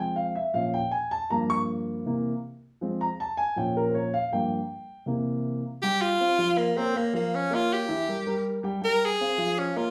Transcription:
Already playing: grand piano F3 G#3 C4 G5
0.16 grand piano F5
0.35 grand piano E5
0.53 grand piano A#2 F3 C#4 F5
0.74 grand piano G5
0.91 grand piano G#5
1.11 grand piano A5
1.30 grand piano G2 F3 A#3 A#5
1.50 grand piano C#6
2.06 grand piano C3 E3 A#3
2.81 grand piano F3 G#3 C4
3.01 grand piano A#5
3.20 grand piano A5
3.37 grand piano G#5
3.56 grand piano A#2 F3 C#4 G5
3.77 grand piano A#4
3.90 grand piano C5
3.94 grand piano C#5
4.14 grand piano F5
4.32 grand piano G2 F3 A#3 G5
5.06 grand piano C3 E3 A#3
5.82 grand piano G3 G4 G5, tenor saxophone G4
6.01 tenor saxophone F4
6.21 grand piano C4 C5 F5
6.38 grand piano F3 F4 F5
6.58 tenor saxophone A#3
6.76 grand piano A#3 A#4 C#5, tenor saxophone C4
6.95 grand piano A#3 A#4 C#5, tenor saxophone A#3
7.13 grand piano F3 F4 F5, tenor saxophone A#3
7.35 tenor saxophone C#4
7.51 grand piano A#3 A#4 C#5
7.55 tenor saxophone F4
7.73 tenor saxophone G4
7.88 grand piano E3 E4 E5
8.08 grand piano G3 G4 A#4
8.26 grand piano G3 G4 A#4
8.63 grand piano G3 G4 G5
8.81 grand piano G3 G4 G5, tenor saxophone A#4
9.05 tenor saxophone G#4
9.21 grand piano C4 C5 F5
9.38 grand piano F3 F4 F5
9.59 tenor saxophone C#4
9.76 grand piano A#3 A#4 C#5, tenor saxophone F4

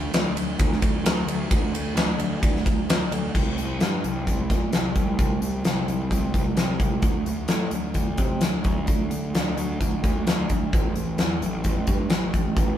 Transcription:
0.14 picked electric bass D2, snare, ride
0.36 picked electric bass D2, ride
0.59 picked electric bass D2, kick, ride
0.72 snare
0.82 picked electric bass D2, kick, ride
1.04 picked electric bass D2, snare, ride
1.26 picked electric bass D2, ride
1.51 picked electric bass D2, kick, ride
1.73 picked electric bass D2, ride
1.95 picked electric bass D2, snare, ride
2.18 picked electric bass D2, ride
2.43 picked electric bass D2, kick, ride
2.56 snare
2.66 picked electric bass D2, kick, ride
2.89 picked electric bass D2, snare, ride
3.11 picked electric bass D2, ride
3.35 picked electric bass C2, kick, crash
3.58 picked electric bass C2, closed hi-hat
3.80 picked electric bass G2, snare, closed hi-hat
4.04 picked electric bass C2, closed hi-hat
4.27 picked electric bass C2, kick, closed hi-hat
4.50 picked electric bass A#2, kick, snare, closed hi-hat
4.71 picked electric bass C2, snare, closed hi-hat
4.95 picked electric bass C2, kick, closed hi-hat
5.19 picked electric bass C2, kick, closed hi-hat
5.41 picked electric bass C2, closed hi-hat
5.65 picked electric bass C2, snare, closed hi-hat
5.87 picked electric bass C2, closed hi-hat
6.11 picked electric bass C2, kick, closed hi-hat
6.34 picked electric bass C2, kick, closed hi-hat
6.56 picked electric bass C2, snare, closed hi-hat
6.80 picked electric bass C2, kick, closed hi-hat
7.02 picked electric bass D2, kick, closed hi-hat
7.26 picked electric bass D2, closed hi-hat
7.48 picked electric bass A2, snare, closed hi-hat
7.71 picked electric bass D2, closed hi-hat
7.94 picked electric bass D2, kick, closed hi-hat
8.18 picked electric bass C3, kick, closed hi-hat
8.41 picked electric bass D2, snare, closed hi-hat
8.64 picked electric bass D2, kick, closed hi-hat
8.87 picked electric bass D2, kick, closed hi-hat
9.11 picked electric bass D2, closed hi-hat
9.35 picked electric bass D2, snare, closed hi-hat
9.57 picked electric bass D2, closed hi-hat
9.81 picked electric bass D2, kick, closed hi-hat
10.04 picked electric bass D2, kick, closed hi-hat
10.26 picked electric bass D2, snare, closed hi-hat
10.49 picked electric bass D2, kick, closed hi-hat
10.73 picked electric bass A1, kick, closed hi-hat
10.95 picked electric bass A1, closed hi-hat
11.18 picked electric bass E2, snare, closed hi-hat
11.41 picked electric bass A1, closed hi-hat
11.64 picked electric bass A1, kick, closed hi-hat
11.87 picked electric bass G2, kick, closed hi-hat
12.10 picked electric bass A1, snare, closed hi-hat
12.34 picked electric bass A1, kick, closed hi-hat
12.56 picked electric bass A1, kick, closed hi-hat

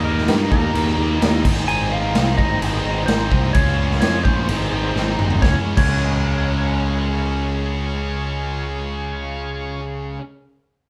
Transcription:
Already playing: fingered electric bass D#2, distorted electric guitar D#3, tonewheel organ A#3 D#4 G4 A#4
0.04 distorted electric guitar G3 A#3 D#4, electric slide guitar A#4
0.18 snare
0.27 fingered electric bass G2, distorted electric guitar D#3 G3 A#3 D#4, snare, crash
0.51 fingered electric bass D#2, distorted electric guitar G3 A#3 D#4, electric slide guitar A#4, kick
0.74 fingered electric bass D#2, distorted electric guitar D#3 G3 A#3 D#4, crash
0.97 fingered electric bass D#2, distorted electric guitar G3 A#3 D#4
1.21 fingered electric bass D#2, distorted electric guitar D#3 G3 A#3 D#4, snare, crash
1.44 fingered electric bass G#1, distorted electric guitar G#2 D#3 G#3 C4 D#4, tonewheel organ C4 D#4 G#4 C5, kick, crash
1.67 fingered electric bass G#1, distorted electric guitar G#2 D#3 G#3 C4 D#4, electric slide guitar G#5, crash
1.90 distorted electric guitar G#3 C4 D#4, electric slide guitar F5
2.14 fingered electric bass C2, distorted electric guitar D#3 G#3 C4 D#4, snare, crash
2.37 fingered electric bass G#1, distorted electric guitar G#3 C4 D#4, electric slide guitar D#5, kick
2.61 fingered electric bass G#1, distorted electric guitar G#2 D#3 G#3 C4 D#4, crash
2.83 fingered electric bass G#1, distorted electric guitar G#3 C4 D#4
3.06 fingered electric bass G#1, distorted electric guitar D#3 G#3 C4 D#4, electric slide guitar C5, snare, crash
3.30 fingered electric bass C2, distorted electric guitar G#3 C4 D#4, kick
3.53 fingered electric bass C#2, distorted electric guitar C#3 G#3 C#4 F4, tonewheel organ C#4 F4 G#4 C#5, electric slide guitar C#5, kick, crash
3.77 distorted electric guitar G#3 C#4 F4
3.91 snare
4.01 fingered electric bass F2, distorted electric guitar C#3 G#3 C#4 F4, electric slide guitar C#5, snare, crash
4.24 fingered electric bass A#1, distorted electric guitar G#3 C#4 F4, electric slide guitar C5, kick
4.48 fingered electric bass G#1, distorted electric guitar G#2 D#3 G#3 C4 D#4, tonewheel organ C4 D#4 G#4 C5, crash
4.71 fingered electric bass G#1, distorted electric guitar G#3 C4 D#4
4.94 fingered electric bass G#1, distorted electric guitar D#3 G#3 C4 D#4, snare
5.18 fingered electric bass G#1, distorted electric guitar G#3 C4 D#4, mid tom
5.30 floor tom
5.40 fingered electric bass C#2, distorted electric guitar C#3 G#3, tonewheel organ C#4 F4 G#4 C#5, electric slide guitar C#5, kick, snare
5.44 distorted electric guitar C#4
5.75 fingered electric bass C#2, distorted electric guitar C#3 G#3 C#4, electric slide guitar C#5, kick, crash

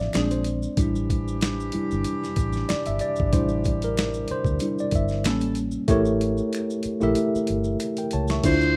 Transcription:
Already playing: tine electric piano F3 C4 D4 D5 E5 F5 G5
0.01 snare
0.13 fingered electric bass A#1, horn section F3 D4 G#4, tine electric piano G#3 C4 D4, finger snap, snare, closed hi-hat, maracas
0.31 tine electric piano C5, closed hi-hat, maracas
0.44 closed hi-hat, maracas
0.63 maracas
0.77 fingered electric bass A1, horn section E3 D4 G4, tine electric piano G3 D4 E4, kick, closed hi-hat, maracas
0.96 maracas
1.10 kick, closed hi-hat, maracas
1.28 maracas
1.41 finger snap, snare, closed hi-hat, maracas
1.60 maracas
1.72 tine electric piano G3 D4 E4, muted fingered electric bass stroke, closed hi-hat
1.91 fingered electric bass G1, maracas
2.04 closed hi-hat, maracas
2.24 snare, maracas
2.36 fingered electric bass A1, kick, closed hi-hat, maracas
2.53 snare, maracas
2.69 tine electric piano D5, finger snap, muted fingered electric bass stroke, snare, closed hi-hat, maracas
2.86 fingered electric bass G1, tine electric piano E5, closed hi-hat, maracas
2.99 tine electric piano D5, closed hi-hat, maracas
3.16 kick, maracas
3.21 fingered electric bass G#1
3.32 fingered electric bass A1, tine electric piano G3 D4 E4 C5, kick, closed hi-hat, maracas
3.49 maracas
3.64 kick, closed hi-hat, maracas
3.82 tine electric piano A#4, closed hi-hat, maracas
3.97 finger snap, snare, closed hi-hat, maracas
4.14 maracas
4.28 tine electric piano C5, muted fingered electric bass stroke, closed hi-hat
4.45 fingered electric bass D2, kick, maracas
4.60 tine electric piano G3 D4 E4, closed hi-hat, maracas
4.79 tine electric piano D5, maracas
4.91 fingered electric bass G1, kick, closed hi-hat, maracas
4.95 tine electric piano E5
5.08 snare, maracas
5.24 fingered electric bass A1, horn section E3 C#4 A4, tine electric piano G3 A#3 C#4, finger snap, snare, closed hi-hat, maracas
5.41 closed hi-hat, maracas
5.55 closed hi-hat, maracas
5.71 maracas
5.88 fingered electric bass A1, tine electric piano A3 E4 G4 A#4 C#5, kick, closed hi-hat, maracas
6.05 maracas
6.21 closed hi-hat
6.38 maracas
6.53 finger snap, closed hi-hat, maracas
6.70 maracas
6.83 muted fingered electric bass stroke, closed hi-hat, maracas
7.00 fingered electric bass A#1, tine electric piano A3 E4 G4 A#4 E5, maracas
7.15 closed hi-hat, maracas
7.35 muted fingered electric bass stroke, maracas
7.47 fingered electric bass G1, closed hi-hat
7.64 maracas
7.80 finger snap, closed hi-hat, maracas
7.97 tine electric piano A#4 G5, closed hi-hat, maracas
8.11 fingered electric bass C#2, tine electric piano C#5 A5, closed hi-hat, maracas
8.28 tine electric piano E5 C#6, snare, maracas
8.43 fingered electric bass D2, tine electric piano D3 D4 E4 F4 C5, muted trumpet C5, kick, closed hi-hat, crash, maracas
8.61 maracas

